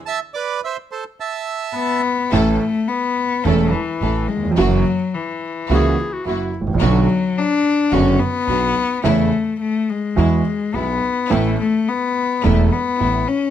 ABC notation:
X:1
M:4/4
L:1/16
Q:1/4=107
K:Am
V:1 name="Bandoneon"
[ea]2 [Bd]2 [ce]2 [Ac]2 [ea]6 z2 | [K:A] z16 | z16 | z16 |
z16 | z16 |]
V:2 name="Clarinet"
z16 | [K:A] z16 | z8 G3 F E3 z | z16 |
z16 | z16 |]
V:3 name="String section"
z16 | [K:A] [CEA]2 z6 [CEA]2 z2 [CEA]2 z2 | [^A,EF]2 z6 [A,EF]2 z2 [A,EF]2 z2 | [B,DF]2 z6 [B,DF]2 z2 [B,DF]2 z2 |
[A,CE]2 z6 [F,G,E]2 z2 [F,G,E]2 z2 | [A,B,E]2 z6 [A,B,E]2 z2 [A,B,E]2 z2 |]
V:4 name="Cello"
z12 B,4 | [K:A] A,2 A,2 B,4 A,2 E,4 G,2 | F,4 E,8 z4 | F,4 D4 C2 B,6 |
A,4 A,2 G,6 B,4 | A,2 A,2 B,4 A,2 B,4 C2 |]
V:5 name="Grand piano" clef=bass
z16 | [K:A] [A,,,A,,E,A,CA]2 z6 [E,,,E,,E,A,CA]2 z2 [A,,,A,,]2 z/2 ^D,,/2 E,,/2 =F,,/2 | [F,,E,F,^A,CF]2 z6 [C,,C,E,A,CF]2 z2 [F,,F,]2 z/2 G,,,/2 =A,,,/2 ^A,,,/2 | [B,,,B,,D,F,B,F]2 z6 [F,,,F,,D,F,B,F]2 z2 [B,,,B,,]2 z2 |
[E,,C,E,A,E]2 z6 [E,,E,G,B,F]2 z2 [B,,,B,,]2 z2 | [A,,,A,,E,A,B,A]2 z6 [E,,,E,,E,A,B,A]2 z2 [A,,,A,,]2 z2 |]
V:6 name="Upright bass" clef=bass
z16 | [K:A] A,,,3/2 z6 z/2 E,,,3/2 z2 z/2 A,,,3/2 z2 z/2 | F,,,3/2 z6 z/2 C,,3/2 z2 z/2 F,,,3/2 z G,,,/2 A,,,/2 ^A,,,/2 | B,,,3/2 z6 z/2 F,,,3/2 z2 z/2 B,,,3/2 z2 z/2 |
E,,3/2 z6 z/2 E,,3/2 z2 z/2 B,,,3/2 z2 z/2 | A,,,3/2 z6 z/2 E,,,3/2 z2 z/2 A,,,3/2 z2 z/2 |]